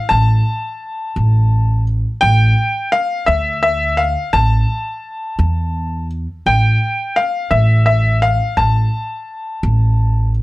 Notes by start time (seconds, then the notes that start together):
Already playing: F5
0.09 A1 A5
1.16 A1
2.21 A1 G5
2.92 F5
3.26 D2 E5
3.63 E5
3.97 F5
4.33 A1 A5
5.39 E2
6.46 A1 G5
7.16 F5
7.51 A1 E5
7.86 E5
8.22 F5
8.57 A1 A5
9.63 A1